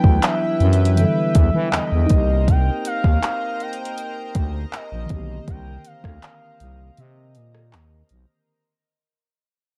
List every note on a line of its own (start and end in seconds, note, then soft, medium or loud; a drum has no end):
0.00 0.92 E3 medium
0.00 2.12 F#3 soft
0.00 0.95 B3 medium
0.00 0.96 D4 medium
0.00 0.97 E4 medium
0.00 2.06 E4 medium
0.00 0.97 G4 medium
0.00 2.07 B4 medium
0.00 0.25 G5 loud
0.00 2.06 G5 medium
0.00 kick medium
0.04 0.19 D2 medium
0.23 0.98 E5 loud
0.23 clap loud
0.23 closed hi-hat medium
0.60 1.05 F#2 loud
0.60 closed hi-hat soft
0.73 closed hi-hat soft
0.85 closed hi-hat medium
0.96 2.11 D3 soft
0.96 2.09 E3 soft
0.96 2.10 G3 soft
0.96 2.10 B3 soft
0.96 1.76 E5 loud
0.96 closed hi-hat medium
1.01 2.12 A4 medium
1.35 1.50 E2 medium
1.35 kick loud
1.35 closed hi-hat medium
1.54 1.69 E3 loud
1.73 1.81 E2 medium
1.73 2.49 D#5 loud
1.73 clap loud
1.73 closed hi-hat medium
1.92 2.07 E2 medium
2.06 5.05 A#3 medium
2.06 5.04 D#4 medium
2.06 closed hi-hat medium
2.10 2.70 C2 loud
2.10 5.06 C4 medium
2.10 8.44 A#4 medium
2.10 8.44 C5 medium
2.10 8.44 D#5 medium
2.10 8.44 A#5 medium
2.10 kick medium
2.16 5.09 G4 medium
2.48 2.84 G5 loud
2.48 kick loud
2.48 closed hi-hat medium
2.85 3.63 F5 loud
2.85 closed hi-hat medium
3.04 3.19 D#2 loud
3.04 kick medium
3.23 clap loud
3.23 closed hi-hat medium
3.60 3.80 G5 loud
3.60 closed hi-hat soft
3.73 closed hi-hat soft
3.81 4.51 G5 loud
3.85 closed hi-hat medium
3.98 closed hi-hat medium
4.35 4.65 D2 medium
4.35 kick loud
4.35 closed hi-hat medium
4.73 5.45 D#5 loud
4.73 clap loud
4.73 closed hi-hat medium
4.92 5.07 A#1 medium
5.06 8.04 D#3 medium
5.06 8.05 A#3 medium
5.06 closed hi-hat medium
5.10 5.40 B1 medium
5.10 8.08 D3 medium
5.10 8.06 C4 medium
5.10 kick medium
5.16 8.09 G4 medium
5.48 5.78 C2 loud
5.48 5.88 G5 loud
5.48 kick loud
5.48 closed hi-hat medium
5.85 7.01 F5 loud
5.85 closed hi-hat medium
6.04 6.19 D2 medium
6.04 kick medium
6.04 cross-stick medium
6.23 clap loud
6.23 closed hi-hat medium
6.60 6.90 C2 medium
6.60 closed hi-hat medium
6.97 7.37 C3 loud
6.97 8.11 D#5 medium
6.97 closed hi-hat medium
7.35 7.75 A#2 loud
7.35 closed hi-hat medium
7.55 cross-stick medium
7.73 8.03 D#2 loud
7.73 clap loud
7.73 closed hi-hat medium
8.09 8.26 B1 medium
8.09 closed hi-hat medium